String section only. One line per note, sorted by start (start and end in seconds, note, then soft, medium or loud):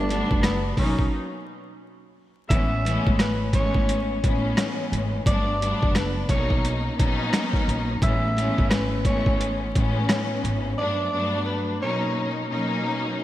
0.08 0.73 F#3 medium
0.08 0.73 G3 loud
0.08 0.73 A3 medium
0.08 0.74 B3 medium
0.08 0.74 D4 loud
0.78 1.13 B2 loud
0.78 1.13 F#3 medium
0.78 1.13 A#3 medium
0.78 1.13 C#4 medium
0.78 1.13 D#4 loud
2.50 2.82 A2 loud
2.50 2.83 E3 loud
2.50 2.83 G#3 medium
2.50 2.83 B3 medium
2.50 2.83 C#4 loud
2.85 3.50 E3 medium
2.85 3.50 G#3 medium
2.85 3.50 A3 loud
2.85 3.50 B3 loud
2.85 3.50 C#4 loud
3.54 4.18 E3 medium
3.54 4.19 G#3 medium
3.54 4.18 A3 loud
3.54 4.19 B3 medium
3.54 4.19 C#4 loud
4.23 5.20 A2 loud
4.23 5.20 E3 medium
4.23 5.20 G#3 medium
4.23 5.20 B3 medium
4.23 5.20 C#4 loud
5.25 5.58 G2 loud
5.25 5.58 F#3 medium
5.25 5.58 A3 medium
5.25 5.59 B3 medium
5.25 5.59 D4 loud
5.60 6.25 F#3 loud
5.60 6.25 G3 loud
5.60 6.25 A3 medium
5.60 6.25 B3 loud
5.60 6.25 D4 loud
6.30 6.94 B2 loud
6.30 6.95 F#3 medium
6.30 6.95 A#3 medium
6.30 6.95 C#4 medium
6.30 6.95 D#4 loud
6.98 7.95 F#3 medium
6.98 7.95 A#3 loud
6.98 7.95 B3 loud
6.98 7.95 C#4 medium
6.98 7.96 D#4 loud
8.02 8.34 A2 loud
8.02 8.34 E3 medium
8.02 8.34 G#3 medium
8.02 8.35 B3 medium
8.02 8.35 C#4 loud
8.37 9.01 E3 medium
8.37 9.02 G#3 loud
8.37 9.01 A3 loud
8.37 9.02 B3 loud
8.37 9.02 C#4 loud
9.06 9.70 E3 medium
9.06 9.70 G#3 medium
9.06 9.70 A3 loud
9.06 9.71 B3 medium
9.06 9.71 C#4 loud
9.75 10.72 A2 loud
9.75 10.72 E3 loud
9.75 10.72 G#3 medium
9.75 10.72 B3 loud
9.75 10.72 C#4 loud
10.77 11.10 G2 loud
10.77 11.10 F#3 medium
10.77 11.10 A3 medium
10.77 11.10 B3 medium
10.77 11.10 D4 loud
11.12 11.77 G2 loud
11.12 11.77 F#3 loud
11.12 11.77 A3 medium
11.12 11.77 B3 loud
11.12 11.77 D4 loud
11.82 12.46 B2 loud
11.82 12.46 F#3 medium
11.82 12.46 A#3 medium
11.82 12.47 C#4 medium
11.82 12.47 D#4 loud
12.50 13.24 B2 loud
12.50 13.24 F#3 medium
12.50 13.24 A#3 medium
12.50 13.24 C#4 loud
12.50 13.24 D#4 loud